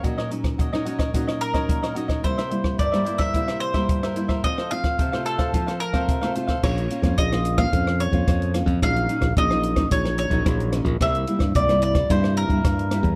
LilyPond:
<<
  \new Staff \with { instrumentName = "Mandolin" } { \time 4/4 \key bes \minor \tempo 4 = 110 r2 r8 bes'4 r8 | c''4 d''8. e''8. c''4. | ees''8 f''4 a'4 bes'4 r8 | des''4 ees''8. f''8. des''4 r8 |
f''4 ees''4 des''8 des''4 r8 | e''4 d''8 d''8 c''8 bes'4. | }
  \new Staff \with { instrumentName = "Cavaquinho" } { \time 4/4 \key bes \minor <ges' bes' des'' ees''>16 <bes' des'' ees''>16 r8 <ges' bes' des'' ees''>16 <bes' des'' ees''>16 <ges' bes' des'' ees''>16 <bes' des'' ees''>16 <ges' bes' des'' ees''>16 <bes' des'' ees''>16 r16 <bes' des'' ees''>8 <bes' des'' ees''>16 <ges' bes' des'' ees''>16 <bes' des'' ees''>16 | <e' bes' c'' e''>16 <bes' c'' e''>16 r8 <e' bes' c'' e''>16 <bes' c'' e''>16 <e' bes' c'' e''>16 <bes' c'' e''>16 <e' bes' c'' e''>16 <bes' c'' e''>16 r16 <bes' c'' e''>8 <bes' c'' e''>16 <e' bes' c'' e''>16 <bes' c'' e''>16 | <f' a' c'' f''>16 <a' c'' f''>16 r8 <f' a' c'' f''>16 <a' c'' f''>16 <f' a' c'' f''>16 <a' c'' f''>16 <f' a' c'' f''>16 <a' c'' f''>16 r16 <a' c'' f''>8 <a' c'' f''>16 <f' a' c'' f''>16 <a' c'' f''>16 | r1 |
r1 | r1 | }
  \new Staff \with { instrumentName = "Nylon-string guitar" } { \time 4/4 \key bes \minor << { <ges des' ees'>8 <ges des' ees'>8. <ges des' ees'>16 <ges des' ees'>8 <ges des' ees'>8. <ges des' ees'>8. <ges des' ees'>8 | <g bes e'>16 r16 <g bes e'>8 r16 <g bes e'>16 <g bes e'>16 r16 <g bes e'>8. <g bes e'>8. <g bes e'>8 | <a c' f'>16 r16 <a c' f'>8 r16 <a c' f'>8. <a c' f'>8 r16 <a c' f'>8 <a c' f'>16 <a c' f'>16 r16 | <bes des' f'>16 r16 <bes des' f'>16 <bes des' f'>8 <bes des' f'>8 <bes des' f'>16 <bes des' f'>8. <bes des' f'>8. <bes des' f'>16 r16 |
<ges des' ees'>8 <ges des' ees'>16 r16 <ges des' ees'>16 <ges des' ees'>8 <ges des' ees'>16 <ges des' ees'>8. <ges des' ees'>8. <ges des' ees'>16 r16 | <g bes e'>8 <g bes e'>16 r16 <g bes e'>16 <g bes e'>8. <g bes e'>8. <g bes e'>8. <g bes e'>8 | } \\ { bes,4 bes,4 bes,4 bes,4 | c4 g,4 c4 g,4 | f4 c4 f4 c4 | bes,4 f,4 bes,4 f,4 |
bes,4 bes,4 bes,4 bes,4 | c4 g,4 c4 g,4 | } >> }
  \new Staff \with { instrumentName = "Fingered electric bass" } { \clef bass \time 4/4 \key bes \minor r1 | r1 | r1 | bes,,8 r16 f,16 bes,,4 f,8. f,16 f,8. f,16 |
bes,,8 r16 bes,,16 bes,,4 bes,,8. bes,,16 bes,,8. bes,,16 | c,8 r16 g,16 c,4 g,8. g,16 g,8. e,16 | }
  \new DrumStaff \with { instrumentName = "Drums" } \drummode { \time 4/4 <hh bd>16 ss16 hh16 <hh bd ss>16 <hh bd>16 ss16 hh16 <hh bd ss>16 <hh bd>16 <hh ss>16 hh16 <hh bd ss>16 <hh bd>16 <hh ss>16 hh16 <hh bd ss>16 | <hh bd>16 <hh ss>16 hh16 <bd ss>16 <hh bd>16 <hh ss>16 hh16 <hh bd ss>16 <hh bd>16 <hh ss>16 hh16 <hh bd ss>16 <hh bd>16 <hh ss>16 hh16 <bd ss>16 | <hh bd>16 ss16 hh16 <hh bd ss>16 <hh bd>16 ss16 hh16 <hh bd ss>16 <hh bd>16 <hh ss>16 hh16 <hh bd ss>16 <hh bd>16 <hh ss>16 hh16 <hh bd ss>16 | <cymc bd ss>16 hh16 hh16 <hh bd ss>16 <hh bd>16 <hh ss>16 hh16 <hh bd ss>16 <hh bd>16 ss16 hh16 <hh bd>16 <hh bd ss>16 hh16 <hh ss>16 <hh bd>16 |
<hh bd ss>16 hh16 hh16 <hh bd ss>16 <hh bd>16 ss16 hh16 <hh bd ss>16 <hh bd>16 <hh ss>16 hh16 <hh bd>16 <hh bd ss>16 hh16 <hh ss>16 <hh bd>16 | <hh bd ss>16 hh16 hh16 <hh bd ss>16 <hh bd>16 <hh ss>16 hh16 <hh bd ss>16 <hh bd>16 ss16 hh16 <hh bd>16 <hh bd ss>16 hh16 <hh ss>16 <hh bd>16 | }
>>